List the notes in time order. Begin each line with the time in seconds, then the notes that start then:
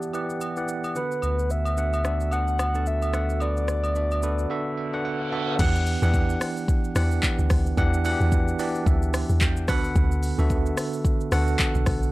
Already playing: E3 B3 G4 D5 E5 F#5 G5 A5, downlifter
0.02 shaker
0.13 E3 B3 G4 D5 F#5, high agogo, shaker
0.30 shaker
0.41 high agogo, shaker
0.57 E3 B3 G4 D5 F#5, shaker
0.68 shaker
0.84 high agogo, shaker
0.95 D3 B3 F#4 A4 B4 F#5, shaker
1.12 shaker
1.22 D2, high agogo, shaker
1.39 shaker
1.50 E5, shaker
1.65 high agogo, shaker
1.77 D3 B3 F#4 A4 F#5, shaker
1.93 high agogo, shaker
2.04 D3 B3 F#4 A4 D5, cross-stick, shaker
2.20 shaker
2.31 D3 B3 F#4 A4 F#5, high agogo, shaker
2.48 shaker
2.59 cross-stick, high agogo, shaker
2.75 D3 B3 F#4 A4 A5, shaker
2.86 E5, shaker
3.02 high agogo, shaker
3.13 D3 B3 F#4 A4 F#5, cross-stick, shaker
3.30 shaker
3.40 D3 B3 F#4 A4 B4 D5, high agogo, shaker
3.57 shaker
3.68 cross-stick, shaker
3.84 high agogo, shaker
3.95 D3 B3 F#4 A4 E5, shaker
4.11 high agogo, shaker
4.22 D3 B3 F#4 A4 B4, shaker
4.39 shaker
4.50 D3 B3 F#4 A4 E5, reverse cymbal
4.78 E5
4.93 D3 B3 F#4 A4 F#5
5.05 F#5
5.32 D3 B3 F#4 A4 E5 A5
5.59 E2 E3 B3 D4 G4 F#5, kick, crash, shaker
5.75 shaker
5.86 open hi-hat, shaker
6.02 E2 E3 B3 D4 G4 F#5, shaker
6.14 kick, shaker
6.30 shaker
6.41 cross-stick, open hi-hat, shaker
6.57 shaker
6.68 kick, shaker
6.84 shaker
6.95 E2 E3 B3 D4 G4 F#5, cross-stick, open hi-hat, shaker
7.11 shaker
7.23 kick, clap, shaker
7.39 D2, shaker
7.50 D2, kick, cross-stick, open hi-hat, shaker
7.66 shaker
7.77 E2 E3 B3 D4 G4 F#5, kick, shaker
7.94 shaker
8.05 E3 B3 D4 F#4 F#5, open hi-hat, shaker
8.12 G4
8.20 E2, shaker
8.32 kick, shaker
8.48 shaker
8.59 E3 B3 D4 G4 D5, open hi-hat, shaker
8.75 shaker
8.86 D2 E5, kick, shaker
9.02 shaker
9.14 cross-stick, open hi-hat, shaker
9.29 E2, shaker
9.41 G5, kick, clap, shaker
9.57 shaker
9.68 D2 D3 B3 F#4 A4 F#5 B5, kick, cross-stick, open hi-hat, shaker
9.84 shaker
9.96 D2, kick, shaker
10.12 shaker
10.23 open hi-hat, shaker
10.38 D2 D3 B3 F#4 A4 E5, shaker
10.50 kick, shaker
10.66 shaker
10.77 cross-stick, open hi-hat, shaker
10.93 shaker
11.05 kick, shaker
11.21 shaker
11.32 D2 D3 B3 F#4 A4 F#5, cross-stick, open hi-hat, shaker
11.47 shaker
11.59 kick, clap, shaker
11.75 B1, shaker
11.86 B1, kick, cross-stick, open hi-hat, shaker
12.02 shaker